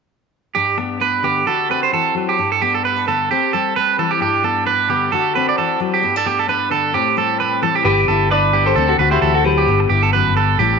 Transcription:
0.55 1.44 G2 medium
0.55 0.99 D4 medium
0.55 0.76 G4 medium
0.77 1.22 B3 medium
0.77 muted clean electric guitar stroke medium
1.00 1.43 D4 medium
1.00 1.23 B4 medium
1.23 1.45 D3 medium
1.23 1.44 B3 soft
1.23 1.45 G4 medium
1.46 1.92 D3 medium
1.46 2.36 F#4 medium
1.46 1.68 A4 medium
1.70 2.35 C4 medium
1.70 1.82 B4 medium
1.83 1.92 C5 medium
1.93 2.14 E3 medium
1.93 2.14 A4 medium
2.15 2.37 F#3 medium
2.29 2.50 G4 medium
2.38 3.27 G2 medium
2.38 2.84 D4 medium
2.52 2.61 A4 medium
2.62 3.07 B3 medium
2.62 2.73 G4 medium
2.74 2.84 A4 medium
2.85 3.06 B4 medium
2.96 3.29 D4 soft
3.08 3.30 D3 medium
3.08 3.28 B3 medium
3.08 3.29 A4 medium
3.31 3.75 C4 medium
3.31 3.52 G4 medium
3.31 muted steel-string acoustic guitar stroke medium
3.53 3.98 G3 soft
3.53 3.74 A4 medium
3.76 4.19 C4 soft
3.76 3.97 B4 medium
3.99 4.18 E3 medium
3.99 4.43 G3 soft
3.99 4.10 A4 medium
4.11 4.20 G4 medium
4.20 5.09 G2 medium
4.20 4.65 D4 medium
4.20 4.43 G4 medium
4.44 4.89 B3 medium
4.44 4.65 A4 medium
4.66 5.09 D4 medium
4.66 4.88 B4 medium
4.89 5.11 D3 medium
4.89 5.10 B3 medium
4.89 5.11 G4 medium
5.12 5.58 D3 medium
5.12 6.01 F#4 medium
5.12 5.33 A4 medium
5.35 6.01 C4 medium
5.35 5.47 B4 medium
5.49 5.58 D5 medium
5.58 5.80 E3 medium
5.58 5.79 A4 medium
5.80 6.03 F#3 medium
5.94 6.15 G4 medium
6.02 6.91 G2 medium
6.02 6.16 B3 medium
6.16 6.47 D4 soft
6.16 6.26 A4 medium
6.26 6.70 B3 medium
6.26 6.38 G4 medium
6.39 6.48 A4 medium
6.48 6.91 D4 medium
6.48 6.70 B4 medium
6.71 6.94 D3 medium
6.71 6.92 B3 medium
6.71 6.93 A4 medium
6.94 7.85 A2 medium
6.94 7.39 C4 medium
6.94 7.16 G4 medium
7.17 7.62 G3 medium
7.17 7.39 A4 medium
7.40 7.83 C4 medium
7.40 7.61 B4 medium
7.62 7.82 E3 medium
7.62 7.87 G3 medium
7.62 7.74 A4 medium
7.75 7.84 G4 medium
7.85 8.06 G1 medium
7.85 8.74 G2 medium
7.85 8.74 B3 medium
7.85 8.07 G4 medium
7.85 8.27 G4 medium
7.85 8.27 B4 medium
8.08 8.73 G1 medium
8.08 8.77 E4 medium
8.08 8.29 A4 medium
8.31 8.74 D4 medium
8.31 8.52 B4 medium
8.31 8.64 B4 medium
8.31 8.64 D5 medium
8.53 8.76 D3 medium
8.53 8.75 G4 medium
8.66 8.87 A4 medium
8.66 8.87 C5 medium
8.76 8.98 D2 medium
8.76 9.22 D3 medium
8.76 9.65 C4 medium
8.76 8.97 A4 medium
8.88 8.95 F#4 medium
8.88 8.94 A4 medium
8.98 9.20 D2 medium
8.98 9.65 F#4 medium
8.98 9.11 B4 medium
9.11 9.32 E4 medium
9.11 9.34 G4 medium
9.11 9.21 C5 medium
9.22 9.65 D2 medium
9.22 9.44 E3 medium
9.22 9.43 A4 medium
9.34 9.44 F#4 medium
9.34 9.44 A4 medium
9.44 9.67 F#3 medium
9.44 9.87 G4 medium
9.44 9.87 B4 medium
9.58 9.79 G4 medium
9.67 9.88 G1 medium
9.67 10.13 G2 medium
9.67 10.56 B3 medium
9.80 muted clean electric guitar stroke medium
9.89 10.55 G1 medium
9.89 10.59 E4 medium
9.89 10.01 G4 medium
10.03 10.12 A4 medium
10.13 10.36 F#2 medium
10.13 10.34 B4 medium
10.36 10.58 G2 medium
10.36 10.57 A4 medium
10.58 10.79 A1 loud
10.58 10.79 A2 medium
10.58 10.79 E3 medium
10.58 10.79 G3 medium
10.58 10.79 C4 medium
10.58 10.79 G4 medium

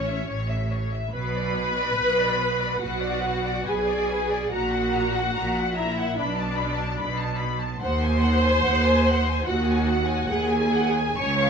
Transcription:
0.00 0.16 A1 medium
0.00 0.16 A2 medium
0.00 0.69 C#4 medium
0.00 0.68 C#5 medium
0.07 0.27 E5 soft
0.27 1.02 A1 medium
0.27 1.02 A2 medium
0.27 0.47 C#5 soft
0.49 0.70 E5 soft
0.72 0.92 C#5 soft
0.92 1.13 E5 soft
1.12 1.87 B1 medium
1.12 1.88 B2 medium
1.12 2.78 B4 medium
1.12 1.33 B4 soft
1.12 2.78 B5 medium
1.37 1.56 D5 soft
1.56 1.77 B4 soft
1.78 1.98 D5 soft
1.97 2.72 B1 medium
1.97 2.72 B2 medium
1.97 2.17 B4 soft
2.17 2.39 D5 soft
2.38 2.60 B4 soft
2.59 2.81 D5 soft
2.78 3.66 F#4 medium
2.78 3.00 B4 soft
2.82 3.58 B1 medium
2.82 3.58 B2 medium
2.82 3.68 F#5 medium
3.01 3.24 D5 soft
3.23 3.45 B4 soft
3.44 3.67 D5 soft
3.65 4.42 B1 medium
3.65 4.42 B2 medium
3.65 4.52 G#4 medium
3.65 3.86 B4 soft
3.65 4.52 G#5 medium
3.87 4.09 D5 soft
4.10 4.31 B4 soft
4.30 4.51 D5 soft
4.51 5.26 A#1 medium
4.51 5.27 A#2 medium
4.51 5.75 F#4 medium
4.51 5.75 F#5 medium
4.51 4.72 A#5 soft
4.73 4.94 F#5 soft
4.93 5.15 A#5 soft
5.14 5.35 F#5 soft
5.36 6.10 A#1 medium
5.36 6.10 A#2 medium
5.36 5.55 A#5 soft
5.58 5.78 F#5 soft
5.76 6.18 E4 medium
5.76 6.17 E5 medium
5.76 5.97 A#5 soft
5.98 6.19 F#5 soft
6.16 6.91 B1 medium
6.16 7.41 D4 medium
6.16 7.41 D5 medium
6.16 6.37 B5 soft
6.21 6.92 B2 medium
6.37 6.59 A5 soft
6.55 6.78 B5 soft
6.76 6.99 A5 soft
6.99 7.73 B1 medium
6.99 7.73 B2 medium
6.99 7.19 B5 soft
7.19 7.40 A5 soft
7.39 7.60 B5 soft
7.60 7.81 A5 soft
7.80 8.55 D#2 medium
7.80 9.43 C5 loud
7.80 8.01 F#5 soft
7.80 9.42 C6 medium
8.03 8.23 G#5 soft
8.23 8.44 F#5 soft
8.44 8.64 G#5 soft
8.64 9.37 D#2 medium
8.64 8.83 F#5 soft
8.85 9.05 G#5 soft
9.07 9.27 F#5 medium
9.29 9.48 G#5 medium
9.46 10.20 D#2 medium
9.46 10.29 F#4 medium
9.46 10.29 F#5 medium
9.46 9.66 F#5 medium
9.68 9.88 G#5 soft
9.87 10.08 F#5 medium
10.08 10.29 G#5 medium
10.28 11.07 D#2 medium
10.28 11.17 G#4 medium
10.28 10.48 F#5 medium
10.28 11.17 G#5 medium
10.49 10.72 G#5 medium
10.72 10.95 F#5 medium
10.95 11.15 G#5 soft
11.17 11.50 C#2 medium
11.17 11.50 C#5 loud
11.17 11.36 G#5 medium
11.17 11.50 C#6 medium
11.40 11.50 F5 soft

